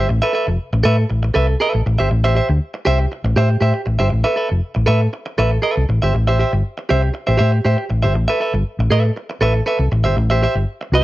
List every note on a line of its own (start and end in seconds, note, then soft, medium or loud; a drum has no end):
0.09 0.19 A1 loud
0.09 muted clean electric guitar stroke soft
0.22 0.32 A4 medium
0.22 0.33 B4 medium
0.22 0.34 E5 medium
0.33 0.49 A4 medium
0.33 0.47 B4 medium
0.33 0.46 E5 medium
0.47 0.56 F1 loud
0.47 muted clean electric guitar stroke medium
0.73 0.82 A1 medium
0.73 muted clean electric guitar stroke soft
0.83 1.04 A2 loud
0.83 1.03 A4 loud
0.83 0.97 B4 loud
0.83 0.96 E5 loud
0.97 muted clean electric guitar stroke medium
1.10 1.29 A1 medium
1.10 muted clean electric guitar stroke soft
1.23 muted clean electric guitar stroke medium
1.34 1.54 C2 loud
1.34 1.54 A4 medium
1.34 1.47 B4 medium
1.34 1.46 E5 loud
1.47 muted clean electric guitar stroke soft
1.60 1.80 A4 medium
1.60 1.73 B4 loud
1.60 1.72 E5 medium
1.74 1.83 A1 medium
1.74 muted clean electric guitar stroke medium
1.86 1.96 A1 loud
1.86 muted clean electric guitar stroke soft
1.99 2.08 G1 medium
1.99 2.08 G4 medium
1.99 2.10 C5 medium
1.99 2.10 E5 medium
2.10 2.39 A1 loud
2.10 muted clean electric guitar stroke soft
2.24 2.34 G4 medium
2.24 2.35 C5 medium
2.24 2.35 E5 medium
2.35 2.51 G4 medium
2.35 2.49 C5 medium
2.35 2.47 E5 medium
2.49 2.58 D2 loud
2.49 muted clean electric guitar stroke soft
2.74 muted clean electric guitar stroke soft
2.85 3.05 C2 loud
2.85 3.05 G4 loud
2.85 2.99 C5 medium
2.85 2.98 E5 loud
2.99 muted clean electric guitar stroke soft
3.12 muted clean electric guitar stroke soft
3.24 3.33 A1 loud
3.24 muted clean electric guitar stroke medium
3.36 3.55 A2 loud
3.36 3.56 G4 medium
3.36 3.49 C5 medium
3.36 3.48 E5 medium
3.50 muted clean electric guitar stroke soft
3.61 3.71 A2 loud
3.61 3.80 G4 medium
3.61 3.74 C5 medium
3.61 3.73 E5 medium
3.74 muted clean electric guitar stroke soft
3.86 3.97 A1 medium
3.86 muted clean electric guitar stroke soft
3.99 4.09 G1 loud
3.99 4.10 G4 medium
3.99 4.10 C5 medium
3.99 4.09 E5 medium
4.10 4.22 A1 medium
4.10 muted clean electric guitar stroke soft
4.24 4.35 A4 medium
4.24 4.36 B4 medium
4.24 4.36 E5 medium
4.36 4.52 A4 medium
4.36 4.49 B4 medium
4.36 4.48 E5 medium
4.49 4.60 F1 medium
4.49 muted clean electric guitar stroke medium
4.75 4.85 A1 loud
4.75 muted clean electric guitar stroke soft
4.86 5.07 A2 loud
4.86 5.06 A4 medium
4.86 5.01 B4 medium
4.86 5.00 E5 loud
5.01 muted clean electric guitar stroke soft
5.13 muted clean electric guitar stroke soft
5.26 muted clean electric guitar stroke medium
5.38 5.57 A1 loud
5.38 5.57 A4 medium
5.38 5.51 B4 medium
5.38 5.50 E5 loud
5.51 muted clean electric guitar stroke soft
5.62 5.83 A4 medium
5.62 5.76 B4 medium
5.62 5.75 E5 medium
5.76 5.86 C2 medium
5.76 muted clean electric guitar stroke soft
5.89 5.99 A1 medium
5.89 muted clean electric guitar stroke soft
6.02 6.11 G1 loud
6.02 6.13 G4 medium
6.02 6.14 C5 medium
6.02 6.15 E5 medium
6.15 6.43 A1 loud
6.15 muted clean electric guitar stroke soft
6.27 6.38 G4 medium
6.27 6.39 C5 medium
6.27 6.39 E5 medium
6.39 6.54 G4 medium
6.39 6.53 C5 medium
6.39 6.52 E5 medium
6.53 6.61 G1 loud
6.53 muted clean electric guitar stroke soft
6.78 muted clean electric guitar stroke soft
6.89 7.09 C2 medium
6.89 7.08 G4 medium
6.89 7.02 C5 medium
6.89 7.01 E5 medium
7.02 muted clean electric guitar stroke medium
7.14 muted clean electric guitar stroke soft
7.27 7.37 A1 loud
7.27 7.36 G4 medium
7.27 7.37 C5 medium
7.27 7.38 E5 medium
7.37 7.59 A2 loud
7.37 7.58 G4 medium
7.37 7.52 C5 medium
7.37 7.51 E5 loud
7.52 muted clean electric guitar stroke soft
7.65 7.75 A2 loud
7.65 7.84 G4 medium
7.65 7.77 C5 medium
7.65 7.77 E5 medium
7.78 muted clean electric guitar stroke medium
7.90 8.05 A1 medium
7.90 muted clean electric guitar stroke soft
8.03 8.15 G1 loud
8.03 8.14 G4 soft
8.03 8.15 C5 medium
8.03 8.14 E5 medium
8.14 8.25 A1 loud
8.14 muted clean electric guitar stroke soft
8.28 8.39 A4 medium
8.28 8.40 B4 medium
8.28 8.41 E5 medium
8.40 8.56 A4 medium
8.40 8.54 B4 medium
8.40 8.53 E5 medium
8.53 8.62 G1 loud
8.53 muted clean electric guitar stroke soft
8.79 8.88 A1 loud
8.79 muted clean electric guitar stroke soft
8.90 9.09 A2 medium
8.90 9.11 A4 medium
8.90 9.04 B4 medium
8.90 9.03 E5 loud
9.04 muted clean electric guitar stroke soft
9.16 muted clean electric guitar stroke soft
9.30 muted clean electric guitar stroke medium
9.41 9.60 A1 loud
9.41 9.60 A4 medium
9.41 9.54 B4 medium
9.41 9.53 E5 medium
9.54 muted clean electric guitar stroke soft
9.66 9.85 A4 medium
9.66 9.79 B4 medium
9.66 9.78 E5 medium
9.79 9.88 C2 medium
9.79 muted clean electric guitar stroke soft
9.92 10.06 A1 medium
9.92 muted clean electric guitar stroke soft
10.04 10.13 G1 loud
10.04 10.16 G4 medium
10.04 10.16 C5 medium
10.04 10.17 E5 medium
10.17 10.45 A1 loud
10.17 muted clean electric guitar stroke soft
10.30 10.41 G4 medium
10.30 10.42 C5 medium
10.30 10.42 E5 medium
10.42 10.57 G4 medium
10.42 10.56 C5 medium
10.42 10.55 E5 medium
10.55 10.64 G1 medium
10.55 muted clean electric guitar stroke soft
10.81 muted clean electric guitar stroke medium
10.92 11.04 C2 loud
10.92 11.04 G4 medium
10.92 11.04 C5 medium
10.92 11.04 E5 loud